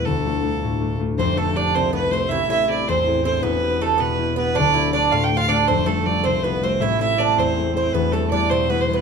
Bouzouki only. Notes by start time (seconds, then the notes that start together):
1.19 C4
1.38 A3
1.57 D4
1.76 C4
1.93 B3
2.13 C4
2.31 E4
2.50 E4
2.89 C4
3.25 C4
3.43 B3
3.81 A3
3.98 B3
4.36 B3
4.55 D4
4.74 E4
4.93 D4
5.12 F4
5.37 F4
5.49 D4
5.68 C4
5.86 A3
6.24 C4
6.44 B3
6.63 C4
6.82 E4
7.01 E4
7.20 D4
7.39 C4
7.77 C4
7.94 B3
8.13 A3
8.32 D4
8.51 C4
8.70 B3
8.93 B3